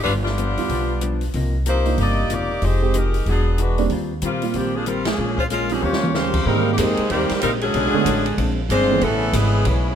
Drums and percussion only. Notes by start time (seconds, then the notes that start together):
0.06 open hi-hat
0.26 snare
0.38 closed hi-hat
0.57 open hi-hat
0.69 open hi-hat
1.01 closed hi-hat
1.21 open hi-hat
1.34 open hi-hat
1.66 closed hi-hat
1.86 open hi-hat
1.98 open hi-hat
2.30 closed hi-hat
2.62 open hi-hat
2.94 closed hi-hat
3.14 open hi-hat
3.26 open hi-hat
3.58 closed hi-hat
3.78 open hi-hat
3.90 open hi-hat
4.22 closed hi-hat
4.42 open hi-hat
4.54 open hi-hat
4.86 closed hi-hat
5.05 snare, ride
5.38 kick
5.50 closed hi-hat
5.69 open hi-hat
5.93 snare
6.04 mid tom
6.14 snare
6.34 kick, crash
6.78 hi-hat pedal, ride
6.97 ride
7.10 ride
7.29 snare, ride
7.41 hi-hat pedal, ride
7.61 ride
7.74 ride
8.06 hi-hat pedal, ride
8.26 ride
8.38 ride
8.70 hi-hat pedal, ride
9.01 ride
9.33 hi-hat pedal, ride
9.65 ride